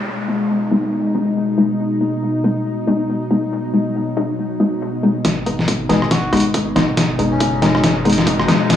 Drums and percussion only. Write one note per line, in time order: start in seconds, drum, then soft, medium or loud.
5.25 kick medium
5.25 snare soft
5.25 closed hi-hat medium
5.46 closed hi-hat medium
5.59 snare soft
5.68 kick medium
5.68 closed hi-hat medium
5.90 snare soft
5.90 closed hi-hat medium
6.02 cross-stick soft
6.11 kick medium
6.11 snare soft
6.11 closed hi-hat medium
6.33 cross-stick soft
6.33 closed hi-hat soft
6.37 closed hi-hat medium
6.40 closed hi-hat medium
6.54 kick medium
6.54 closed hi-hat medium
6.76 cross-stick soft
6.76 snare medium
6.76 closed hi-hat medium
6.97 kick loud
6.97 snare medium
6.97 closed hi-hat medium
7.19 closed hi-hat medium
7.40 kick loud
7.40 closed hi-hat medium
7.62 snare medium
7.62 closed hi-hat medium
7.75 cross-stick soft
7.84 kick medium
7.84 snare medium
7.84 closed hi-hat medium
8.05 closed hi-hat soft
8.10 closed hi-hat medium
8.13 closed hi-hat medium
8.18 snare medium
8.27 kick loud
8.27 closed hi-hat medium
8.39 cross-stick medium
8.48 snare medium
8.48 closed hi-hat medium
8.70 kick loud
8.70 snare medium
8.70 closed hi-hat medium